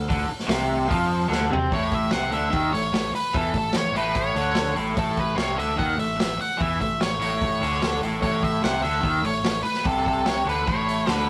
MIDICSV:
0, 0, Header, 1, 7, 480
1, 0, Start_track
1, 0, Key_signature, 3, "major"
1, 0, Tempo, 406780
1, 116, Time_signature, 4, 2, 24, 8
1, 13328, End_track
2, 0, Start_track
2, 0, Title_t, "Lead electric guitar"
2, 0, Program_c, 0, 29
2, 2050, Note_on_c, 0, 73, 105
2, 2285, Note_off_c, 0, 73, 0
2, 2293, Note_on_c, 0, 76, 100
2, 2494, Note_off_c, 0, 76, 0
2, 2498, Note_on_c, 0, 78, 105
2, 2748, Note_off_c, 0, 78, 0
2, 2753, Note_on_c, 0, 76, 95
2, 3196, Note_off_c, 0, 76, 0
2, 3221, Note_on_c, 0, 73, 97
2, 3669, Note_off_c, 0, 73, 0
2, 3717, Note_on_c, 0, 71, 85
2, 3958, Note_off_c, 0, 71, 0
2, 3972, Note_on_c, 0, 69, 98
2, 4205, Note_off_c, 0, 69, 0
2, 4219, Note_on_c, 0, 69, 92
2, 4437, Note_on_c, 0, 73, 96
2, 4448, Note_off_c, 0, 69, 0
2, 4678, Note_off_c, 0, 73, 0
2, 4686, Note_on_c, 0, 71, 91
2, 4912, Note_off_c, 0, 71, 0
2, 4917, Note_on_c, 0, 73, 109
2, 5583, Note_off_c, 0, 73, 0
2, 5887, Note_on_c, 0, 69, 100
2, 6122, Note_off_c, 0, 69, 0
2, 6132, Note_on_c, 0, 71, 90
2, 6342, Note_off_c, 0, 71, 0
2, 6347, Note_on_c, 0, 73, 97
2, 6584, Note_on_c, 0, 76, 98
2, 6592, Note_off_c, 0, 73, 0
2, 6807, Note_off_c, 0, 76, 0
2, 6825, Note_on_c, 0, 78, 105
2, 7067, Note_off_c, 0, 78, 0
2, 7072, Note_on_c, 0, 76, 95
2, 7312, Note_off_c, 0, 76, 0
2, 7326, Note_on_c, 0, 76, 97
2, 7558, Note_off_c, 0, 76, 0
2, 7563, Note_on_c, 0, 78, 93
2, 7777, Note_off_c, 0, 78, 0
2, 7807, Note_on_c, 0, 76, 103
2, 8026, Note_off_c, 0, 76, 0
2, 8040, Note_on_c, 0, 76, 88
2, 8279, Note_off_c, 0, 76, 0
2, 8281, Note_on_c, 0, 73, 91
2, 9426, Note_off_c, 0, 73, 0
2, 9705, Note_on_c, 0, 73, 95
2, 9950, Note_on_c, 0, 76, 90
2, 9953, Note_off_c, 0, 73, 0
2, 10190, Note_off_c, 0, 76, 0
2, 10194, Note_on_c, 0, 78, 96
2, 10409, Note_off_c, 0, 78, 0
2, 10414, Note_on_c, 0, 76, 101
2, 10912, Note_on_c, 0, 73, 92
2, 10916, Note_off_c, 0, 76, 0
2, 11357, Note_off_c, 0, 73, 0
2, 11362, Note_on_c, 0, 71, 79
2, 11624, Note_off_c, 0, 71, 0
2, 11644, Note_on_c, 0, 69, 88
2, 11861, Note_off_c, 0, 69, 0
2, 11896, Note_on_c, 0, 69, 77
2, 12131, Note_off_c, 0, 69, 0
2, 12138, Note_on_c, 0, 73, 84
2, 12373, Note_off_c, 0, 73, 0
2, 12378, Note_on_c, 0, 71, 83
2, 12600, Note_off_c, 0, 71, 0
2, 12605, Note_on_c, 0, 73, 100
2, 13124, Note_off_c, 0, 73, 0
2, 13124, Note_on_c, 0, 71, 100
2, 13276, Note_off_c, 0, 71, 0
2, 13328, End_track
3, 0, Start_track
3, 0, Title_t, "Overdriven electric guitar"
3, 0, Program_c, 1, 29
3, 103, Note_on_c, 1, 50, 108
3, 335, Note_off_c, 1, 50, 0
3, 565, Note_on_c, 1, 48, 103
3, 1043, Note_off_c, 1, 48, 0
3, 1047, Note_on_c, 1, 53, 107
3, 1517, Note_off_c, 1, 53, 0
3, 1522, Note_on_c, 1, 50, 101
3, 1768, Note_off_c, 1, 50, 0
3, 1784, Note_on_c, 1, 60, 96
3, 2018, Note_off_c, 1, 60, 0
3, 2036, Note_on_c, 1, 45, 96
3, 2502, Note_off_c, 1, 45, 0
3, 2507, Note_on_c, 1, 48, 97
3, 2725, Note_off_c, 1, 48, 0
3, 2730, Note_on_c, 1, 50, 94
3, 2953, Note_off_c, 1, 50, 0
3, 2957, Note_on_c, 1, 51, 102
3, 3204, Note_off_c, 1, 51, 0
3, 3218, Note_on_c, 1, 45, 74
3, 3414, Note_off_c, 1, 45, 0
3, 3461, Note_on_c, 1, 45, 65
3, 3655, Note_off_c, 1, 45, 0
3, 3944, Note_on_c, 1, 52, 109
3, 4174, Note_off_c, 1, 52, 0
3, 4179, Note_on_c, 1, 45, 73
3, 4374, Note_off_c, 1, 45, 0
3, 4429, Note_on_c, 1, 45, 70
3, 4619, Note_off_c, 1, 45, 0
3, 4663, Note_on_c, 1, 45, 97
3, 5137, Note_off_c, 1, 45, 0
3, 5152, Note_on_c, 1, 50, 101
3, 5609, Note_off_c, 1, 50, 0
3, 5613, Note_on_c, 1, 45, 98
3, 5833, Note_off_c, 1, 45, 0
3, 5847, Note_on_c, 1, 45, 104
3, 6324, Note_off_c, 1, 45, 0
3, 6328, Note_on_c, 1, 48, 97
3, 6565, Note_off_c, 1, 48, 0
3, 6570, Note_on_c, 1, 50, 98
3, 6804, Note_off_c, 1, 50, 0
3, 6809, Note_on_c, 1, 51, 102
3, 7041, Note_off_c, 1, 51, 0
3, 7045, Note_on_c, 1, 45, 74
3, 7246, Note_off_c, 1, 45, 0
3, 7278, Note_on_c, 1, 45, 67
3, 7483, Note_off_c, 1, 45, 0
3, 7766, Note_on_c, 1, 52, 103
3, 8008, Note_off_c, 1, 52, 0
3, 8029, Note_on_c, 1, 45, 69
3, 8218, Note_off_c, 1, 45, 0
3, 8270, Note_on_c, 1, 45, 67
3, 8459, Note_off_c, 1, 45, 0
3, 8497, Note_on_c, 1, 45, 93
3, 8988, Note_off_c, 1, 45, 0
3, 8988, Note_on_c, 1, 50, 103
3, 9460, Note_off_c, 1, 50, 0
3, 9471, Note_on_c, 1, 45, 99
3, 9678, Note_off_c, 1, 45, 0
3, 9692, Note_on_c, 1, 45, 103
3, 10172, Note_off_c, 1, 45, 0
3, 10187, Note_on_c, 1, 48, 99
3, 10420, Note_off_c, 1, 48, 0
3, 10425, Note_on_c, 1, 50, 101
3, 10632, Note_off_c, 1, 50, 0
3, 10636, Note_on_c, 1, 51, 110
3, 10885, Note_off_c, 1, 51, 0
3, 10894, Note_on_c, 1, 45, 71
3, 11093, Note_off_c, 1, 45, 0
3, 11149, Note_on_c, 1, 45, 70
3, 11341, Note_off_c, 1, 45, 0
3, 11623, Note_on_c, 1, 48, 104
3, 12324, Note_off_c, 1, 48, 0
3, 12329, Note_on_c, 1, 50, 98
3, 12575, Note_off_c, 1, 50, 0
3, 12591, Note_on_c, 1, 45, 101
3, 13054, Note_off_c, 1, 45, 0
3, 13054, Note_on_c, 1, 50, 107
3, 13328, Note_off_c, 1, 50, 0
3, 13328, End_track
4, 0, Start_track
4, 0, Title_t, "Picked electric bass"
4, 0, Program_c, 2, 34
4, 115, Note_on_c, 2, 38, 99
4, 322, Note_off_c, 2, 38, 0
4, 567, Note_on_c, 2, 36, 99
4, 1023, Note_off_c, 2, 36, 0
4, 1073, Note_on_c, 2, 41, 96
4, 1517, Note_off_c, 2, 41, 0
4, 1523, Note_on_c, 2, 38, 98
4, 1757, Note_off_c, 2, 38, 0
4, 1778, Note_on_c, 2, 48, 104
4, 2005, Note_off_c, 2, 48, 0
4, 2023, Note_on_c, 2, 33, 89
4, 2471, Note_off_c, 2, 33, 0
4, 2501, Note_on_c, 2, 36, 93
4, 2726, Note_off_c, 2, 36, 0
4, 2733, Note_on_c, 2, 38, 89
4, 2962, Note_off_c, 2, 38, 0
4, 2985, Note_on_c, 2, 39, 91
4, 3208, Note_off_c, 2, 39, 0
4, 3221, Note_on_c, 2, 33, 77
4, 3446, Note_off_c, 2, 33, 0
4, 3452, Note_on_c, 2, 33, 78
4, 3678, Note_off_c, 2, 33, 0
4, 3947, Note_on_c, 2, 40, 89
4, 4169, Note_off_c, 2, 40, 0
4, 4179, Note_on_c, 2, 33, 81
4, 4394, Note_off_c, 2, 33, 0
4, 4401, Note_on_c, 2, 33, 81
4, 4624, Note_off_c, 2, 33, 0
4, 4631, Note_on_c, 2, 33, 88
4, 5093, Note_off_c, 2, 33, 0
4, 5128, Note_on_c, 2, 38, 86
4, 5582, Note_off_c, 2, 38, 0
4, 5616, Note_on_c, 2, 33, 98
4, 5843, Note_off_c, 2, 33, 0
4, 5861, Note_on_c, 2, 33, 95
4, 6309, Note_off_c, 2, 33, 0
4, 6332, Note_on_c, 2, 36, 92
4, 6561, Note_off_c, 2, 36, 0
4, 6573, Note_on_c, 2, 38, 89
4, 6801, Note_off_c, 2, 38, 0
4, 6828, Note_on_c, 2, 39, 91
4, 7046, Note_off_c, 2, 39, 0
4, 7053, Note_on_c, 2, 33, 84
4, 7281, Note_off_c, 2, 33, 0
4, 7309, Note_on_c, 2, 33, 80
4, 7530, Note_off_c, 2, 33, 0
4, 7794, Note_on_c, 2, 40, 92
4, 8012, Note_off_c, 2, 40, 0
4, 8022, Note_on_c, 2, 33, 78
4, 8246, Note_off_c, 2, 33, 0
4, 8279, Note_on_c, 2, 33, 79
4, 8490, Note_off_c, 2, 33, 0
4, 8497, Note_on_c, 2, 33, 87
4, 8947, Note_off_c, 2, 33, 0
4, 8976, Note_on_c, 2, 38, 87
4, 9427, Note_off_c, 2, 38, 0
4, 9446, Note_on_c, 2, 33, 93
4, 9678, Note_off_c, 2, 33, 0
4, 9709, Note_on_c, 2, 33, 93
4, 10154, Note_off_c, 2, 33, 0
4, 10164, Note_on_c, 2, 36, 96
4, 10392, Note_off_c, 2, 36, 0
4, 10399, Note_on_c, 2, 38, 90
4, 10635, Note_off_c, 2, 38, 0
4, 10650, Note_on_c, 2, 39, 93
4, 10876, Note_off_c, 2, 39, 0
4, 10883, Note_on_c, 2, 33, 75
4, 11119, Note_off_c, 2, 33, 0
4, 11135, Note_on_c, 2, 33, 79
4, 11365, Note_off_c, 2, 33, 0
4, 11625, Note_on_c, 2, 36, 94
4, 12303, Note_off_c, 2, 36, 0
4, 12334, Note_on_c, 2, 38, 90
4, 12567, Note_off_c, 2, 38, 0
4, 12587, Note_on_c, 2, 33, 93
4, 13039, Note_off_c, 2, 33, 0
4, 13068, Note_on_c, 2, 38, 95
4, 13328, Note_off_c, 2, 38, 0
4, 13328, End_track
5, 0, Start_track
5, 0, Title_t, "Muted overdriven electric guitar strokes"
5, 350, Note_on_c, 9, 29, 64
5, 468, Note_off_c, 9, 29, 0
5, 3707, Note_on_c, 9, 29, 54
5, 3825, Note_off_c, 9, 29, 0
5, 7531, Note_on_c, 9, 29, 61
5, 7649, Note_off_c, 9, 29, 0
5, 11374, Note_on_c, 9, 29, 55
5, 11492, Note_off_c, 9, 29, 0
5, 13328, End_track
6, 0, Start_track
6, 0, Title_t, "Muted picked electric bass strokes"
6, 329, Note_on_c, 9, 29, 41
6, 447, Note_off_c, 9, 29, 0
6, 3685, Note_on_c, 9, 29, 42
6, 3803, Note_off_c, 9, 29, 0
6, 7548, Note_on_c, 9, 29, 42
6, 7666, Note_off_c, 9, 29, 0
6, 11382, Note_on_c, 9, 29, 38
6, 11500, Note_off_c, 9, 29, 0
6, 13328, End_track
7, 0, Start_track
7, 0, Title_t, "Drums"
7, 120, Note_on_c, 9, 36, 104
7, 123, Note_on_c, 9, 46, 62
7, 238, Note_off_c, 9, 36, 0
7, 241, Note_off_c, 9, 46, 0
7, 466, Note_on_c, 9, 38, 35
7, 582, Note_off_c, 9, 38, 0
7, 582, Note_on_c, 9, 38, 114
7, 586, Note_on_c, 9, 46, 62
7, 700, Note_off_c, 9, 38, 0
7, 704, Note_off_c, 9, 46, 0
7, 1072, Note_on_c, 9, 36, 101
7, 1075, Note_on_c, 9, 46, 60
7, 1190, Note_off_c, 9, 36, 0
7, 1193, Note_off_c, 9, 46, 0
7, 1558, Note_on_c, 9, 38, 64
7, 1676, Note_off_c, 9, 38, 0
7, 1808, Note_on_c, 9, 43, 84
7, 1926, Note_off_c, 9, 43, 0
7, 2030, Note_on_c, 9, 36, 104
7, 2042, Note_on_c, 9, 46, 71
7, 2148, Note_off_c, 9, 36, 0
7, 2160, Note_off_c, 9, 46, 0
7, 2259, Note_on_c, 9, 46, 58
7, 2264, Note_on_c, 9, 36, 84
7, 2377, Note_off_c, 9, 46, 0
7, 2382, Note_off_c, 9, 36, 0
7, 2490, Note_on_c, 9, 38, 109
7, 2494, Note_on_c, 9, 46, 76
7, 2608, Note_off_c, 9, 38, 0
7, 2612, Note_off_c, 9, 46, 0
7, 2739, Note_on_c, 9, 46, 57
7, 2857, Note_off_c, 9, 46, 0
7, 2980, Note_on_c, 9, 46, 76
7, 2987, Note_on_c, 9, 36, 99
7, 3098, Note_off_c, 9, 46, 0
7, 3105, Note_off_c, 9, 36, 0
7, 3239, Note_on_c, 9, 46, 56
7, 3357, Note_off_c, 9, 46, 0
7, 3468, Note_on_c, 9, 38, 106
7, 3472, Note_on_c, 9, 46, 76
7, 3586, Note_off_c, 9, 38, 0
7, 3590, Note_off_c, 9, 46, 0
7, 3719, Note_on_c, 9, 46, 58
7, 3837, Note_off_c, 9, 46, 0
7, 3946, Note_on_c, 9, 36, 112
7, 3952, Note_on_c, 9, 46, 72
7, 4064, Note_off_c, 9, 36, 0
7, 4070, Note_off_c, 9, 46, 0
7, 4174, Note_on_c, 9, 46, 57
7, 4180, Note_on_c, 9, 36, 84
7, 4292, Note_off_c, 9, 46, 0
7, 4298, Note_off_c, 9, 36, 0
7, 4400, Note_on_c, 9, 38, 104
7, 4404, Note_on_c, 9, 46, 73
7, 4518, Note_off_c, 9, 38, 0
7, 4522, Note_off_c, 9, 46, 0
7, 4673, Note_on_c, 9, 46, 57
7, 4791, Note_off_c, 9, 46, 0
7, 4895, Note_on_c, 9, 46, 67
7, 4900, Note_on_c, 9, 36, 99
7, 5013, Note_off_c, 9, 46, 0
7, 5018, Note_off_c, 9, 36, 0
7, 5147, Note_on_c, 9, 46, 53
7, 5265, Note_off_c, 9, 46, 0
7, 5371, Note_on_c, 9, 38, 115
7, 5374, Note_on_c, 9, 46, 68
7, 5489, Note_off_c, 9, 38, 0
7, 5492, Note_off_c, 9, 46, 0
7, 5622, Note_on_c, 9, 46, 52
7, 5740, Note_off_c, 9, 46, 0
7, 5863, Note_on_c, 9, 46, 69
7, 5864, Note_on_c, 9, 36, 107
7, 5981, Note_off_c, 9, 46, 0
7, 5982, Note_off_c, 9, 36, 0
7, 6104, Note_on_c, 9, 46, 52
7, 6105, Note_on_c, 9, 36, 85
7, 6222, Note_off_c, 9, 46, 0
7, 6223, Note_off_c, 9, 36, 0
7, 6347, Note_on_c, 9, 38, 106
7, 6351, Note_on_c, 9, 46, 73
7, 6465, Note_off_c, 9, 38, 0
7, 6469, Note_off_c, 9, 46, 0
7, 6600, Note_on_c, 9, 46, 56
7, 6718, Note_off_c, 9, 46, 0
7, 6834, Note_on_c, 9, 36, 100
7, 6838, Note_on_c, 9, 46, 75
7, 6952, Note_off_c, 9, 36, 0
7, 6956, Note_off_c, 9, 46, 0
7, 7071, Note_on_c, 9, 46, 60
7, 7189, Note_off_c, 9, 46, 0
7, 7318, Note_on_c, 9, 38, 117
7, 7321, Note_on_c, 9, 46, 80
7, 7436, Note_off_c, 9, 38, 0
7, 7439, Note_off_c, 9, 46, 0
7, 7568, Note_on_c, 9, 46, 54
7, 7686, Note_off_c, 9, 46, 0
7, 7797, Note_on_c, 9, 36, 105
7, 7804, Note_on_c, 9, 46, 75
7, 7915, Note_off_c, 9, 36, 0
7, 7922, Note_off_c, 9, 46, 0
7, 8034, Note_on_c, 9, 36, 81
7, 8039, Note_on_c, 9, 46, 54
7, 8152, Note_off_c, 9, 36, 0
7, 8157, Note_off_c, 9, 46, 0
7, 8271, Note_on_c, 9, 38, 108
7, 8274, Note_on_c, 9, 46, 75
7, 8389, Note_off_c, 9, 38, 0
7, 8392, Note_off_c, 9, 46, 0
7, 8515, Note_on_c, 9, 46, 59
7, 8633, Note_off_c, 9, 46, 0
7, 8751, Note_on_c, 9, 36, 108
7, 8752, Note_on_c, 9, 46, 69
7, 8869, Note_off_c, 9, 36, 0
7, 8870, Note_off_c, 9, 46, 0
7, 9000, Note_on_c, 9, 46, 53
7, 9118, Note_off_c, 9, 46, 0
7, 9232, Note_on_c, 9, 38, 114
7, 9236, Note_on_c, 9, 46, 74
7, 9350, Note_off_c, 9, 38, 0
7, 9354, Note_off_c, 9, 46, 0
7, 9474, Note_on_c, 9, 46, 52
7, 9592, Note_off_c, 9, 46, 0
7, 9705, Note_on_c, 9, 36, 104
7, 9706, Note_on_c, 9, 46, 64
7, 9823, Note_off_c, 9, 36, 0
7, 9824, Note_off_c, 9, 46, 0
7, 9946, Note_on_c, 9, 36, 89
7, 9960, Note_on_c, 9, 46, 55
7, 10064, Note_off_c, 9, 36, 0
7, 10078, Note_off_c, 9, 46, 0
7, 10194, Note_on_c, 9, 38, 105
7, 10197, Note_on_c, 9, 46, 67
7, 10312, Note_off_c, 9, 38, 0
7, 10315, Note_off_c, 9, 46, 0
7, 10438, Note_on_c, 9, 46, 56
7, 10556, Note_off_c, 9, 46, 0
7, 10660, Note_on_c, 9, 36, 105
7, 10667, Note_on_c, 9, 46, 71
7, 10778, Note_off_c, 9, 36, 0
7, 10785, Note_off_c, 9, 46, 0
7, 10910, Note_on_c, 9, 46, 57
7, 11028, Note_off_c, 9, 46, 0
7, 11147, Note_on_c, 9, 38, 114
7, 11150, Note_on_c, 9, 46, 77
7, 11265, Note_off_c, 9, 38, 0
7, 11268, Note_off_c, 9, 46, 0
7, 11387, Note_on_c, 9, 46, 59
7, 11495, Note_on_c, 9, 38, 34
7, 11505, Note_off_c, 9, 46, 0
7, 11613, Note_off_c, 9, 38, 0
7, 11622, Note_on_c, 9, 46, 75
7, 11628, Note_on_c, 9, 36, 102
7, 11740, Note_off_c, 9, 46, 0
7, 11746, Note_off_c, 9, 36, 0
7, 11874, Note_on_c, 9, 36, 87
7, 11883, Note_on_c, 9, 46, 56
7, 11992, Note_off_c, 9, 36, 0
7, 12001, Note_off_c, 9, 46, 0
7, 12107, Note_on_c, 9, 38, 111
7, 12111, Note_on_c, 9, 46, 80
7, 12225, Note_off_c, 9, 38, 0
7, 12229, Note_off_c, 9, 46, 0
7, 12379, Note_on_c, 9, 46, 55
7, 12497, Note_off_c, 9, 46, 0
7, 12594, Note_on_c, 9, 46, 73
7, 12596, Note_on_c, 9, 36, 108
7, 12712, Note_off_c, 9, 46, 0
7, 12714, Note_off_c, 9, 36, 0
7, 12844, Note_on_c, 9, 46, 60
7, 12962, Note_off_c, 9, 46, 0
7, 13066, Note_on_c, 9, 38, 102
7, 13070, Note_on_c, 9, 46, 74
7, 13184, Note_off_c, 9, 38, 0
7, 13188, Note_off_c, 9, 46, 0
7, 13328, End_track
0, 0, End_of_file